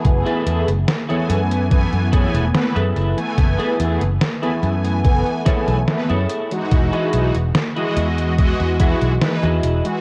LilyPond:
<<
  \new Staff \with { instrumentName = "Clean electric guitar" } { \time 4/4 \key e \major \tempo 4 = 72 r16 <e' gis' a' b'>8 r8 <e' gis' a' cis''>16 r4 <e' gis' a' cis''>8 r16 <e' gis' a' b'>8 r16 | r16 <e' gis' a' b'>8 r8 <e' gis' a' b'>16 r4 <e' gis' a' cis''>8 r16 <e' gis' a' cis''>8 r16 | r16 <e' fis' gis' dis''>8 r8 <e' fis' gis' dis''>16 r4 <e' fis' gis' e''>8 r16 <e' fis' gis' dis''>8 r16 | }
  \new Staff \with { instrumentName = "Analog polysynth" } { \time 4/4 \key e \major <e a b gis'>8 <e a b gis'>16 r8 <e a b gis''>8. <e a b gis''>8 <e a b gis''>8 <e a b b'>16 r8 <e a b gis''>16~ | <e a b gis''>8 <e a b gis'>16 r8 <e a b gis''>8. <e a b gis''>8 <e a b gis''>8 <e a b b'>16 r8 <e gis dis' fis'>16~ | <e gis dis' fis'>8 <e gis dis' fis'>16 r8 <e gis fis' dis''>8. <e gis fis' dis''>8 <e gis fis'>8 <e gis dis' b'>16 r8 <e gis fis'>16 | }
  \new Staff \with { instrumentName = "Fretless electric bass" } { \clef bass \time 4/4 \key e \major fis,,16 r16 e,16 fis,,16 r8 fis,8. fis,8 e,,16 r16 fis,16 fis,,16 r16 | fis,,16 r16 e,16 fis,,16 r8 fis,8 fis,,16 r8 b,,16 r16 fis,16 r8 | e,,16 r16 b,,16 e,,16 r8 e,8. e,8 b,,16 r16 e,16 e,,16 r16 | }
  \new DrumStaff \with { instrumentName = "Drums" } \drummode { \time 4/4 <hh bd>16 hh16 hh16 hh16 <hh sn>16 hh16 hh16 hh16 <hh bd>16 hh16 <hh bd>16 hh16 <hh sn>16 hh16 hh16 hh16 | <hh bd>16 hh16 hh16 hh16 <hh sn>16 hh16 hh16 hh16 <hh bd>16 hh16 <hh bd sn>16 hh16 <hh sn>16 hh16 hh16 hh16 | <hh bd>16 hh16 hh16 hh16 <hh sn>16 hh16 hh16 hh16 <hh bd>16 hh16 <hh bd>16 hh16 <hh sn>16 hh16 hh16 hh16 | }
>>